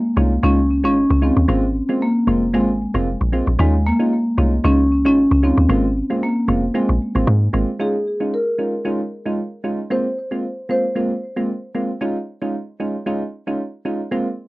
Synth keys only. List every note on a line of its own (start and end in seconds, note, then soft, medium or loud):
0.17 0.33 G#3 medium
0.17 0.33 C#4 medium
0.17 0.33 D#4 medium
0.17 0.33 F4 medium
0.43 0.59 G#3 loud
0.43 0.59 C#4 medium
0.43 0.59 D#4 medium
0.43 0.60 F4 loud
0.84 0.98 G#3 medium
0.84 0.98 C#4 medium
0.84 0.98 D#4 medium
0.84 0.98 F4 medium
1.22 1.38 G#3 medium
1.22 1.38 C#4 medium
1.22 1.38 D#4 medium
1.22 1.38 F4 medium
1.48 1.64 G#3 loud
1.48 1.64 A#3 medium
1.48 1.65 C4 medium
1.48 1.65 F4 loud
1.89 2.03 G#3 medium
1.89 2.03 A#3 medium
1.89 2.03 C4 medium
1.89 2.03 F4 medium
2.27 2.43 G#3 medium
2.27 2.43 A#3 medium
2.27 2.44 C4 medium
2.27 2.44 F4 medium
2.53 2.70 G#3 medium
2.53 2.70 A#3 medium
2.53 2.70 C4 medium
2.53 2.70 F4 loud
2.94 3.08 G#3 medium
2.94 3.08 A#3 medium
2.94 3.08 C4 medium
2.94 3.09 F4 medium
3.32 3.49 G#3 medium
3.32 3.49 A#3 medium
3.32 3.49 C4 medium
3.32 3.49 F4 medium
3.59 3.75 G#3 loud
3.59 3.75 C#4 medium
3.59 3.75 D#4 medium
3.59 3.75 F4 loud
3.99 4.13 G#3 medium
3.99 4.14 C#4 medium
3.99 4.14 D#4 medium
3.99 4.14 F4 medium
4.38 4.54 G#3 medium
4.38 4.54 C#4 medium
4.38 4.54 D#4 medium
4.38 4.54 F4 medium
4.64 4.80 G#3 medium
4.64 4.80 C#4 medium
4.64 4.80 D#4 medium
4.64 4.81 F4 loud
5.05 5.19 G#3 medium
5.05 5.19 C#4 medium
5.05 5.19 D#4 medium
5.05 5.19 F4 medium
5.43 5.59 G#3 medium
5.43 5.59 C#4 medium
5.43 5.59 D#4 medium
5.43 5.60 F4 medium
5.69 5.85 G#3 loud
5.69 5.86 A#3 medium
5.69 5.86 C4 medium
5.69 5.86 F4 loud
6.10 6.24 G#3 medium
6.10 6.24 A#3 medium
6.10 6.24 C4 medium
6.10 6.24 F4 medium
6.48 6.64 G#3 medium
6.48 6.64 A#3 medium
6.48 6.64 C4 medium
6.48 6.65 F4 medium
6.74 6.91 G#3 medium
6.74 6.91 A#3 medium
6.74 6.91 C4 medium
6.74 6.91 F4 loud
7.15 7.29 G#3 medium
7.15 7.29 A#3 medium
7.15 7.29 C4 medium
7.15 7.30 F4 medium
7.53 7.70 G#3 medium
7.53 7.70 A#3 medium
7.53 7.70 C4 medium
7.53 7.70 F4 medium
7.79 7.96 G#3 medium
7.79 7.96 C#4 medium
7.79 7.96 D#4 medium
7.79 7.96 F4 loud
8.20 8.34 G#3 medium
8.20 8.34 C#4 medium
8.20 8.35 D#4 medium
8.20 8.35 F4 medium
8.58 8.75 G#3 medium
8.58 8.75 C#4 medium
8.58 8.75 D#4 medium
8.58 8.75 F4 medium
8.85 9.01 G#3 medium
8.85 9.01 C#4 medium
8.85 9.01 D#4 medium
8.85 9.02 F4 loud
9.26 9.40 G#3 medium
9.26 9.40 C#4 medium
9.26 9.40 D#4 medium
9.26 9.40 F4 medium
9.64 9.80 G#3 medium
9.64 9.80 C#4 medium
9.64 9.80 D#4 medium
9.64 9.80 F4 medium
9.90 10.07 G#3 medium
9.90 10.07 A#3 medium
9.90 10.07 C4 medium
9.90 10.07 F4 loud
10.31 10.45 G#3 medium
10.31 10.45 A#3 medium
10.31 10.45 C4 medium
10.31 10.45 F4 medium
10.69 10.86 G#3 medium
10.69 10.86 A#3 medium
10.69 10.86 C4 medium
10.69 10.86 F4 medium
10.95 11.12 G#3 medium
10.95 11.12 A#3 medium
10.95 11.12 C4 medium
10.95 11.12 F4 loud
11.36 11.50 G#3 medium
11.36 11.51 A#3 medium
11.36 11.51 C4 medium
11.36 11.51 F4 medium
11.75 11.91 G#3 medium
11.75 11.91 A#3 medium
11.75 11.91 C4 medium
11.75 11.91 F4 medium
12.01 12.17 G#3 medium
12.01 12.17 C#4 medium
12.01 12.17 D#4 medium
12.01 12.18 F4 loud
12.42 12.56 G#3 medium
12.42 12.56 C#4 medium
12.42 12.56 D#4 medium
12.42 12.56 F4 medium
12.80 12.96 G#3 medium
12.80 12.96 C#4 medium
12.80 12.96 D#4 medium
12.80 12.96 F4 medium
13.06 13.22 G#3 medium
13.06 13.22 C#4 medium
13.06 13.23 D#4 medium
13.06 13.23 F4 loud
13.47 13.61 G#3 medium
13.47 13.61 C#4 medium
13.47 13.61 D#4 medium
13.47 13.61 F4 medium
13.85 14.01 G#3 medium
13.85 14.01 C#4 medium
13.85 14.02 D#4 medium
13.85 14.02 F4 medium
14.11 14.28 G#3 medium
14.11 14.28 A#3 medium
14.11 14.28 C4 medium
14.11 14.28 F4 loud